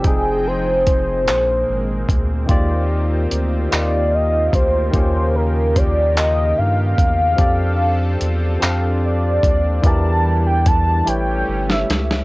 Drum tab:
HH |x---x-x---x-|x---x-x---x-|x---x-x---x-|x---x-x---x-|
CP |------x-----|------x-----|------x-----|------x-----|
SD |------------|------------|------------|------------|
BD |o---o-----o-|o---------o-|o---o-----o-|o---------o-|

HH |x---x-x---x-|
CP |------------|
SD |---------ooo|
BD |o---o-------|